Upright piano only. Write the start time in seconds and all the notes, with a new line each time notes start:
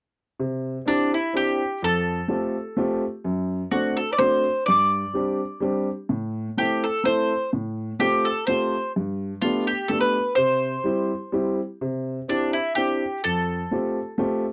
0.39 C3
0.86 C4 D4 E4 G4
1.33 C4 D4 E4 G4
1.83 F2
2.28 A3 C4 F4 G4
2.77 A3 C4 F4 G4
3.25 F#2
3.71 A3 C4 D4 F#4
4.19 A3 C4 D4 F#4
4.68 G2
5.14 G3 C4 D4 G4
5.60 G3 C4 D4 G4
6.09 A2
6.57 A3 C4 E4 A4
7.04 A3 C4 E4 A4
7.53 A2
7.99 A3 C4 F4 G4
8.48 A3 C4 F4 G4
8.96 G2
9.42 A3 B3 D4 G4
9.89 A3 B3 D4 G4
10.37 C3
10.84 G3 C4 E4 G4
11.32 G3 C4 E4 G4
11.81 C3
12.28 C4 D4 E4 G4
12.75 C4 D4 E4 G4
13.25 F2
13.71 A3 C4 F4 G4
14.18 A3 C4 F4 G4